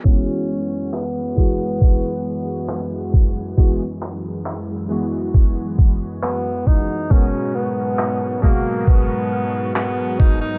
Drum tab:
CP |--x---x-|-xx---x-|--x---x-|
BD |o--oo--o|o---oo-o|o--oo--o|